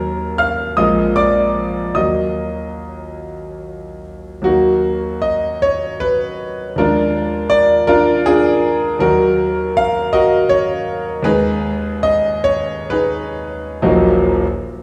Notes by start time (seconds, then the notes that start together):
Already playing: D#2 F#3 A#3 D#4 A#4 A#5
0.38 F5 F6
0.77 A#1 G#3 A#3 F4 D#5 D#6
1.16 D5 D6
1.95 D#2 F#3 A#3 F#4 D#5 D#6
4.42 D#2 F#3 A#3 D#4 F#4
5.22 D#5
5.62 C#5
6.00 B4
6.76 D#2 F3 G#3 D4 F4 A#4
7.50 D5
7.87 D4 F4 A#4
8.26 D4 F4 G#4
8.99 D#2 D#3 F#3 D#4 F#4 A#4
9.77 F5
10.13 F#4 A#4 D#5
10.49 C#5
11.23 D#2 D#3 G#3 D#4 G#4 B4
12.03 D#5
12.44 C#5
12.90 D#4 G#4 B4
13.82 D#1 A#1 F#3 A#3 D#4 F#4 D#5